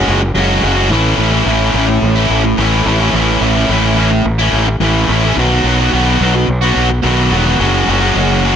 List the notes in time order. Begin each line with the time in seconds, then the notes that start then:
Already playing: G#3 C#4 F#4
0.07 F#1
0.21 muted distorted electric guitar stroke
0.35 F#1 F#3 G#3 C#4 F#4
0.62 F#1 F#3 G#3 C#4 F#4
0.76 G#3 C#4 F#4
0.90 A1 A2 E3 A3 C#4 E4
1.18 A1 E3 A3 C#4 E4
1.32 A3 C#4 E4
1.46 A1 A2 E3 A3 C#4 E4
1.73 A1 E3 A3 C#4 E4
1.88 muted distorted electric guitar stroke
2.02 A1
2.16 A3 C#4 E4
2.30 A1
2.44 muted distorted electric guitar stroke
2.57 A1 A2 E3 A3 C#4 E4
2.85 A1 E3 A3 C#4 E4
2.99 A3 C#4 E4
3.13 A1 A2 E3 A3 C#4 E4
3.41 A1 E3 A3 C#4 E4
3.55 A3 C#4 E4
3.69 A1 A2 E3 A3 C#4 E4
3.97 E3 A3 C#4 E4
4.12 muted distorted electric guitar stroke
4.25 A1
4.39 A3 C#4 E4
4.53 A1
4.68 muted distorted electric guitar stroke
4.80 A1 A2 E3 A3 C#4 E4
5.09 A1 E3 A3 C#4 E4
5.23 A3 C#4 E4
5.36 B1 B2 D#3 F#3 B3 F#4
5.64 B1 D#3 F#3 B3 F#4
5.78 F#3 B3 F#4
5.92 B1 B2 D#3 F#3 B3 F#4
6.20 B1 D#3 F#3 B3 F#4
6.35 muted distorted electric guitar stroke
6.48 B1
6.62 F#3 B3 F#4
6.76 B1
6.90 muted distorted electric guitar stroke
7.03 B1 B2 D#3 F#3 B3 F#4
7.31 E1 D#3 F#3 B3 F#4
7.45 F#3 B3 F#4
7.59 F#1 F#3 G#3 C#4 F#4
7.86 F#1 F#3 G#3 C#4 F#4
8.00 G#3 C#4 F#4
8.15 F#1 F#3 G#3 C#4 F#4
8.43 F#3 G#3 C#4 F#4